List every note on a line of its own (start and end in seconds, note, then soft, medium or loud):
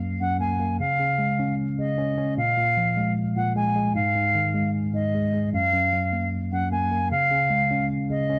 0.00 0.20 F#2 loud
0.00 0.60 F#3 medium
0.00 0.39 A#3 medium
0.20 0.80 F#2 medium
0.20 0.37 F#5 medium
0.40 0.59 A#3 medium
0.40 0.77 G#5 medium
0.60 0.80 A#3 medium
0.80 0.98 C#3 medium
0.80 1.55 F5 loud
1.00 1.77 C#3 medium
1.19 2.18 G#3 medium
1.39 1.97 C#4 medium
1.79 2.38 C#3 medium
1.79 2.34 D#5 medium
1.98 2.17 C#4 medium
2.18 2.38 C#4 medium
2.38 2.56 A#2 medium
2.38 3.13 F5 loud
2.57 3.35 A#2 medium
2.77 3.76 F3 medium
2.97 3.55 G#3 medium
3.36 3.96 A#2 medium
3.36 3.53 F#5 medium
3.56 3.74 G#3 loud
3.56 3.93 G#5 medium
3.75 3.95 G#3 medium
3.95 4.14 G#2 loud
3.95 4.70 F5 loud
4.16 4.93 G#2 medium
4.35 5.34 D#3 medium
4.54 5.13 G#3 medium
4.94 5.53 G#2 medium
4.94 5.50 D#5 medium
5.14 5.33 G#3 medium
5.34 5.54 G#3 medium
5.53 5.72 F#2 loud
5.53 6.28 F5 loud
5.73 6.51 F#2 medium
5.93 6.92 F#3 medium
6.13 6.71 A#3 medium
6.52 7.11 F#2 medium
6.52 6.69 F#5 medium
6.72 6.90 A#3 medium
6.72 7.09 G#5 medium
6.91 7.11 A#3 medium
7.11 7.30 C#3 medium
7.11 7.86 F5 loud
7.31 8.09 C#3 medium
7.50 8.39 G#3 medium
7.71 8.28 C#4 medium
8.10 8.39 C#3 medium
8.10 8.39 D#5 medium
8.29 8.39 C#4 medium